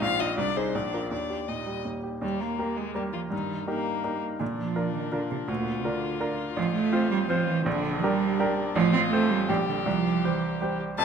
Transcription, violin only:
0.02 0.22 F5 medium
0.20 0.38 D#5 medium
0.38 0.58 D5 medium
0.57 0.76 C5 medium
0.74 1.11 D5 medium
1.11 1.50 D5 soft
1.48 1.85 D#5 soft
2.22 2.42 G3 medium
2.40 2.78 A#3 soft
2.77 2.95 G#3 medium
2.95 3.03 G3 soft
3.13 3.20 F4 soft
3.32 3.68 D#4 soft
3.69 4.22 A#3 medium
4.40 5.50 D4 soft
5.49 7.65 F4 soft
7.66 8.77 D4 medium
8.75 9.50 F4 medium
9.49 10.80 G4 medium
10.98 11.05 A5 medium

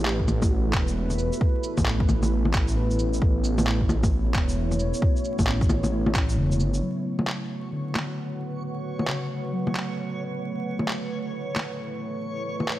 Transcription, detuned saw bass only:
0.00 0.75 A1 loud
0.74 1.31 E1 medium
1.78 2.89 A1 loud
2.90 3.20 A1 medium
3.22 4.36 A1 loud
4.35 4.92 E1 loud
5.39 6.37 A1 loud
6.37 6.61 E1 loud
6.60 6.81 G1 loud

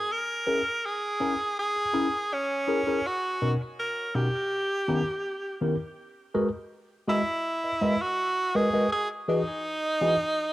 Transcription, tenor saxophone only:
0.00 0.14 G#4 loud
0.12 0.87 A#4 loud
0.86 1.58 G#4 medium
1.59 2.35 G#4 loud
2.33 3.08 C#4 medium
3.06 3.52 F#4 loud
3.79 4.17 A#4 medium
4.15 5.61 G4 medium
7.09 8.03 E4 loud
8.02 8.57 F#4 loud
8.55 8.91 G#4 loud
8.92 9.08 G#4 loud
9.29 10.53 D#4 loud

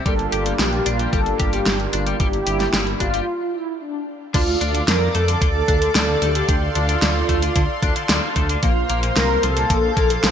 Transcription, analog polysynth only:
0.06 0.61 A4 loud
0.60 0.87 G4 loud
0.86 1.14 F4 loud
1.13 1.54 A4 loud
1.53 1.94 G4 loud
1.93 2.18 F4 medium
2.20 3.03 G4 loud
3.00 3.56 F4 loud
3.54 3.82 E4 medium
3.81 4.18 D4 medium
4.34 4.89 F4 loud
4.88 5.16 A#4 loud
5.15 6.25 A4 loud
6.22 6.77 G4 loud
6.76 8.32 F4 loud
8.63 9.18 F4 loud
9.16 9.44 A#4 loud
9.43 10.31 A4 loud

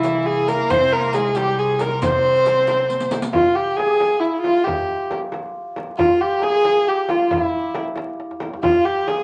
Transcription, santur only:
0.00 3.40 E4 medium
0.00 1.42 G#4 medium
0.00 0.48 A#4 medium
0.00 0.70 C5 medium
0.48 0.92 A#4 medium
0.70 0.99 C5 medium
0.93 1.06 A#4 medium
0.99 2.01 C5 medium
1.06 1.80 A#4 medium
1.36 3.56 G4 medium
1.81 4.64 A#4 medium
2.02 2.09 C5 medium
2.10 2.18 C5 soft
2.25 2.32 C5 soft
2.39 2.47 C5 soft
2.47 2.54 C5 soft
2.54 2.63 C5 soft
2.71 2.77 C5 soft
2.78 2.86 C5 soft
2.87 2.93 C5 soft
2.93 5.57 C5 medium
3.34 4.28 F4 medium
3.57 3.85 G4 medium
3.79 3.92 G#4 medium
3.86 3.98 G4 medium
3.92 4.73 G#4 medium
4.22 4.51 E4 medium
4.45 5.99 F4 medium
4.67 6.21 G4 medium
6.00 7.08 F4 medium
6.21 6.49 G4 medium
6.39 6.64 G#4 medium
6.39 9.22 A#4 medium
6.65 6.93 G#4 medium
6.87 8.57 G4 medium
7.09 7.37 F4 medium
7.31 8.69 E4 medium
8.57 9.13 G4 soft
8.63 9.23 F4 medium
9.07 9.23 G#4 medium

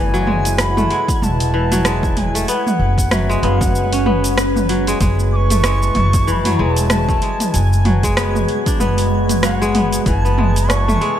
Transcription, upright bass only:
0.00 0.84 F#1 loud
1.22 2.42 E1 medium
2.79 3.37 F#1 medium
3.43 4.95 F#1 loud
5.01 5.90 F#1 loud
5.96 6.30 F#1 loud
6.28 6.52 F#2 loud
6.59 7.16 E1 loud
7.54 8.43 F#1 loud
8.80 10.00 F#1 medium
10.06 10.95 F#1 loud

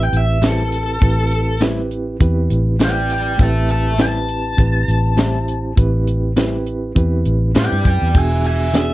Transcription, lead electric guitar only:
0.03 0.14 G5 medium
0.17 0.44 E5 medium
0.46 1.60 A4 loud
2.84 3.11 D5 medium
2.84 3.11 G5 medium
3.12 3.39 D5 medium
3.12 3.40 G5 medium
3.42 3.69 E5 medium
3.42 3.70 A5 medium
3.71 3.98 E5 medium
3.71 3.99 A5 medium
4.02 5.75 A5 medium
7.59 7.86 D5 medium
7.59 7.86 G5 medium
7.87 8.14 D5 medium
7.87 8.15 G5 medium
8.18 8.44 E5 medium
8.18 8.45 G#5 medium
8.46 8.73 E5 medium
8.46 8.75 G#5 medium
8.77 8.94 E5 medium

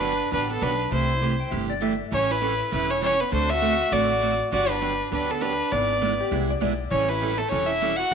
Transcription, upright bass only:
0.00 0.20 G1 medium
0.32 0.57 A1 medium
0.62 0.87 B1 medium
0.91 1.39 C2 loud
1.52 2.00 G1 medium
2.12 2.60 A1 medium
2.72 3.20 E1 medium
3.32 3.80 D2 medium
3.92 4.40 A1 medium
4.52 5.00 G1 loud
5.12 5.60 D2 medium
5.72 6.20 G#1 medium
6.32 6.57 C2 medium
6.62 6.87 B1 medium
6.91 7.39 A1 loud
7.52 8.00 E1 medium

